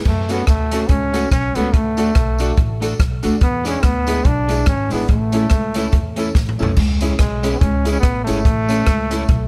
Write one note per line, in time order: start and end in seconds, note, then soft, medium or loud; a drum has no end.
0.05 0.42 F#2 loud
0.05 0.33 A3 medium
0.05 kick loud
0.05 crash medium
0.29 0.40 A3 medium
0.29 0.48 B3 medium
0.29 0.42 C#4 medium
0.29 0.41 C#4 medium
0.29 0.42 F#4 medium
0.29 0.41 F#4 medium
0.29 0.42 A4 loud
0.29 closed hi-hat medium
0.29 tambourine medium
0.47 0.84 D2 medium
0.47 0.90 A3 medium
0.47 kick loud
0.47 cross-stick loud
0.47 closed hi-hat medium
0.71 0.83 A3 medium
0.71 0.84 C#4 medium
0.71 0.83 C#4 medium
0.71 0.84 F#4 medium
0.71 0.84 F#4 loud
0.71 0.84 A4 loud
0.71 closed hi-hat loud
0.71 tambourine medium
0.89 1.25 C#2 medium
0.89 1.31 C#4 loud
0.89 0.95 F#4 soft
0.89 0.95 A4 soft
0.89 muted clean electric guitar stroke soft
0.89 kick loud
0.89 closed hi-hat medium
1.12 1.25 A3 medium
1.12 1.25 C#4 medium
1.12 1.26 F#4 medium
1.12 1.26 A4 loud
1.12 closed hi-hat medium
1.12 tambourine medium
1.31 1.52 B1 medium
1.31 1.57 C#4 loud
1.31 muted clean electric guitar stroke soft
1.31 kick loud
1.31 cross-stick loud
1.31 closed hi-hat medium
1.55 1.71 C#2 medium
1.55 1.67 A3 medium
1.55 1.75 B3 loud
1.55 1.68 C#4 medium
1.55 1.68 F#4 medium
1.55 1.68 A4 loud
1.55 closed hi-hat medium
1.55 tambourine medium
1.74 2.10 D2 loud
1.74 3.00 A3 medium
1.74 kick loud
1.74 closed hi-hat medium
1.97 2.09 A3 medium
1.97 2.09 D4 loud
1.97 2.09 D4 medium
1.97 2.10 F#4 medium
1.97 2.10 A4 loud
1.97 closed hi-hat medium
1.97 tambourine medium
2.15 2.51 B1 medium
2.15 kick loud
2.15 cross-stick loud
2.15 closed hi-hat medium
2.38 2.51 A3 medium
2.38 2.52 D4 medium
2.38 2.51 D4 medium
2.38 2.52 F#4 medium
2.38 2.51 F#4 loud
2.38 2.52 A4 medium
2.38 closed hi-hat loud
2.38 tambourine medium
2.57 2.93 A1 loud
2.57 2.63 F#4 soft
2.57 2.63 A4 soft
2.57 muted clean electric guitar stroke soft
2.57 kick loud
2.57 closed hi-hat medium
2.80 2.92 A3 medium
2.80 2.93 D4 medium
2.80 2.92 D4 medium
2.80 2.94 F#4 medium
2.80 2.93 F#4 medium
2.80 2.94 A4 loud
2.80 closed hi-hat medium
2.80 tambourine medium
2.99 3.20 B1 medium
2.99 muted clean electric guitar stroke soft
2.99 kick loud
2.99 cross-stick loud
2.99 closed hi-hat medium
3.23 3.39 D2 medium
3.23 3.34 A3 medium
3.23 3.35 D4 medium
3.23 3.35 F#4 medium
3.23 3.36 A4 medium
3.23 closed hi-hat medium
3.23 tambourine medium
3.41 3.77 E2 loud
3.41 3.65 B3 loud
3.41 kick loud
3.41 closed hi-hat medium
3.64 3.76 G#3 medium
3.64 3.85 C#4 medium
3.64 3.76 D4 medium
3.64 3.77 D4 loud
3.64 3.77 E4 medium
3.64 3.78 E4 medium
3.64 3.78 G#4 loud
3.64 closed hi-hat medium
3.64 tambourine medium
3.83 4.19 D2 medium
3.83 4.28 B3 loud
3.83 kick medium
3.83 cross-stick loud
3.83 closed hi-hat medium
4.07 4.18 G#3 medium
4.07 4.19 D4 medium
4.07 4.20 E4 medium
4.07 4.19 E4 loud
4.07 4.20 G#4 loud
4.07 closed hi-hat loud
4.07 tambourine medium
4.25 4.61 B1 loud
4.25 4.68 D4 loud
4.25 4.31 E4 soft
4.25 4.31 G#4 soft
4.25 muted clean electric guitar stroke soft
4.25 kick loud
4.25 closed hi-hat medium
4.47 4.59 G#3 medium
4.47 4.60 D4 medium
4.47 4.61 D4 medium
4.47 4.60 E4 medium
4.47 4.62 E4 medium
4.47 4.62 G#4 medium
4.47 closed hi-hat medium
4.47 tambourine medium
4.66 4.88 G#1 loud
4.66 4.94 C#4 loud
4.66 muted clean electric guitar stroke soft
4.66 kick loud
4.66 cross-stick loud
4.66 closed hi-hat medium
4.90 5.07 G#1 medium
4.90 5.01 G#3 medium
4.90 5.10 B3 medium
4.90 5.02 D4 loud
4.90 5.04 D4 medium
4.90 5.02 E4 medium
4.90 5.04 E4 medium
4.90 5.04 G#4 loud
4.90 open hi-hat soft
4.90 tambourine medium
5.08 5.45 A1 loud
5.08 6.32 A3 medium
5.08 kick loud
5.08 closed hi-hat medium
5.32 5.44 A3 medium
5.32 5.44 C#4 medium
5.32 5.45 C#4 loud
5.32 5.44 E4 medium
5.32 5.46 E4 medium
5.32 5.46 A4 loud
5.32 closed hi-hat medium
5.32 tambourine medium
5.50 5.87 C#2 medium
5.50 kick loud
5.50 cross-stick loud
5.50 closed hi-hat medium
5.74 5.86 A3 medium
5.74 5.87 C#4 medium
5.74 5.86 C#4 medium
5.74 5.88 E4 medium
5.74 5.87 E4 loud
5.74 5.88 A4 loud
5.74 closed hi-hat loud
5.74 tambourine medium
5.92 6.29 E2 loud
5.92 5.99 E4 soft
5.92 5.99 A4 soft
5.92 kick loud
5.92 closed hi-hat medium
6.16 6.28 A3 medium
6.16 6.28 C#4 medium
6.16 6.29 C#4 medium
6.16 6.30 E4 medium
6.16 6.29 E4 medium
6.16 6.30 A4 loud
6.16 closed hi-hat medium
6.16 tambourine medium
6.35 6.56 A1 medium
6.35 muted clean electric guitar stroke soft
6.35 kick loud
6.35 snare medium
6.49 mid tom medium
6.59 6.75 B1 medium
6.59 6.70 A3 medium
6.59 6.71 C#4 medium
6.59 6.71 E4 medium
6.59 6.72 A4 medium
6.59 tambourine medium
6.63 floor tom loud
6.76 7.13 C#2 loud
6.76 kick loud
6.76 crash loud
7.01 7.12 G#3 medium
7.01 7.13 C#4 medium
7.01 7.12 C#4 medium
7.01 7.14 E4 medium
7.01 7.13 E4 medium
7.01 7.14 G#4 loud
7.01 closed hi-hat medium
7.01 tambourine medium
7.19 7.55 B1 medium
7.19 7.53 G#3 medium
7.19 kick loud
7.19 cross-stick loud
7.19 closed hi-hat medium
7.43 7.54 G#3 loud
7.43 7.55 C#4 medium
7.43 7.54 C#4 loud
7.43 7.55 E4 medium
7.43 7.55 E4 loud
7.43 7.56 G#4 loud
7.43 closed hi-hat loud
7.43 tambourine medium
7.52 7.60 B3 medium
7.59 7.97 C#2 loud
7.59 7.91 C#4 loud
7.59 7.66 E4 soft
7.59 7.66 G#4 soft
7.59 muted clean electric guitar stroke soft
7.59 kick loud
7.59 closed hi-hat medium
7.85 7.96 G#3 medium
7.85 7.97 C#4 medium
7.85 7.97 E4 medium
7.85 7.97 G#4 loud
7.85 closed hi-hat medium
7.85 tambourine medium
7.92 7.99 C#4 medium
8.00 8.24 B3 loud
8.00 muted clean electric guitar stroke soft
8.00 kick loud
8.00 cross-stick loud
8.00 closed hi-hat medium
8.04 8.24 A1 medium
8.24 8.38 G#3 medium
8.24 9.48 A3 loud
8.24 8.39 C#4 medium
8.24 8.38 C#4 loud
8.24 8.39 E4 medium
8.24 8.39 G#4 medium
8.24 closed hi-hat medium
8.24 tambourine medium
8.28 8.43 G#1 medium
8.45 8.81 A1 loud
8.45 kick loud
8.45 closed hi-hat medium
8.68 8.80 A3 medium
8.68 8.81 C#4 loud
8.68 8.80 C#4 medium
8.68 8.81 E4 medium
8.68 8.82 A4 loud
8.68 closed hi-hat medium
8.68 tambourine medium
8.87 9.23 C#2 medium
8.87 kick loud
8.87 cross-stick loud
8.87 closed hi-hat medium
9.10 9.22 A3 medium
9.10 9.23 C#4 medium
9.10 9.23 E4 medium
9.10 9.23 E4 loud
9.10 9.23 A4 medium
9.10 closed hi-hat loud
9.10 tambourine medium
9.29 9.48 B1 loud
9.29 9.34 E4 soft
9.29 9.34 A4 soft
9.29 muted clean electric guitar stroke soft
9.29 kick loud
9.29 closed hi-hat medium